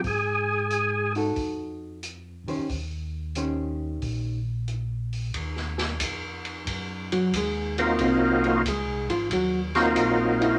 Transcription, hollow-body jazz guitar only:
X:1
M:4/4
L:1/8
Q:"Swing" 1/4=90
K:Abmix
V:1 name="Hollow-body jazz guitar"
z3 [EG=A]3 z [E,D=Gc] | z2 [E,D=Gc]3 z3 | z4 z [G,G] [A,A] [B,B] | [Cc] [B,B] [A,A] [F,F] [G,G] z2 _F |]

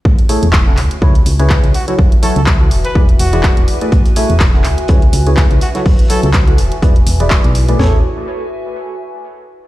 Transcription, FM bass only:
X:1
M:4/4
L:1/16
Q:"Swing 16ths" 1/4=124
K:A
V:1 name="FM bass" clef=bass
A,,, z2 E,,,3 C,, z C,,2 C,,3 C,, z2 | F,,, z2 C,,3 E,,, z E,,,2 E,,,3 E,,, z2 | A,,, z2 E,,,3 C,, z C,,2 C,,3 C,, z2 | F,,, z2 C,,3 E,,, z E,,,2 E,,,3 B,,,3 |
A,,,2 z12 z2 |]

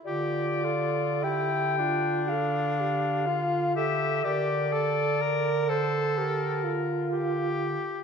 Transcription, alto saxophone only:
X:1
M:4/4
L:1/8
Q:1/4=62
K:Dm
V:1 name="Alto saxophone"
F A G F A G F A | B A B A G F2 z |]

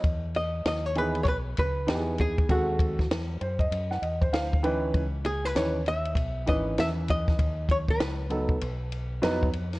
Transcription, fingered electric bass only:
X:1
M:4/4
L:1/8
Q:"Swing 16ths" 1/4=98
K:C#m
V:1 name="Fingered electric bass" clef=bass
E,,2 D,,2 B,,, C,, E,,2 | D,,2 E,, F,, F,, E,, =D,,2 | C,,2 D,,2 B,,, G,,, E,,2 | D,,2 C,,2 B,,,2 ^E,,2 |]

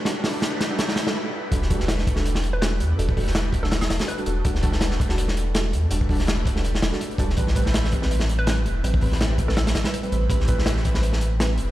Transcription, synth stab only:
X:1
M:4/4
L:1/16
Q:"Swing 16ths" 1/4=164
K:Em
V:1 name="Synth stab"
[G,DFA] z [G,DFA] z4 [G,DFA] z3 [G,DFA] z4 | [G,DFA] z [G,DFA] z4 [G,DFA]4- [G,DFA] [G,DFA] z3 | [G,DFA] z [G,DFA] z4 [G,DFA] z3 [G,DFA] z [G,DFA] [G,DFA] z | [G,DFA] z [G,DFA] z4 [G,DFA]4- [G,DFA] [G,DFA] z3 |
[G,DFA] z [G,DFA] z4 [G,DFA] z3 [G,DFA] z2 [G,DFA] z | [G,CB] z [G,CB] z4 [G,CB]4- [G,CB] [G,CB] z3 | [G,CB] z [G,CB] z4 [G,CB] z3 [G,CB] z [G,CB] [G,CB] z | [G,CB] z [G,CB] z4 [G,CB]4- [G,CB] [G,CB] z3 |]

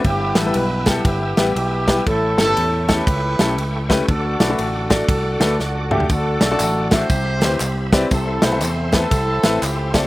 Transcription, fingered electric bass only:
X:1
M:4/4
L:1/8
Q:"Swing" 1/4=119
K:Ador
V:1 name="Fingered electric bass" clef=bass
G,,, A,,, B,,,2 G,,, A,,, B,,,2 | A,,, G,,, E,,2 ^C,, B,,, C,,2 | D,, B,,, A,,,2 C,, D,, ^C,,2 | D,, B,,, A,,,2 C,, D,, C,,2 |
C,, B,,, E,,2 C,, A,,, ^C,,2 |]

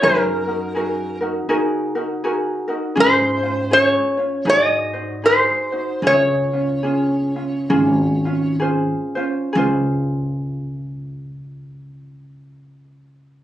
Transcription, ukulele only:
X:1
M:4/4
L:1/8
Q:"Swing" 1/4=75
K:Db
V:1 name="Ukulele"
[EGAB] [EGB] [EGAB] [EGB] [EGAB] [EGB] [EGAB] [EGB] | [DFA] [DF] [DFAd] [DFd] [EGAc] [EGc] [EGAc] [EGc] | [DFA] [DF] [DFA] [DF] [DFA] [DF] [DFAc] [DFc] | [DFAc]8 |]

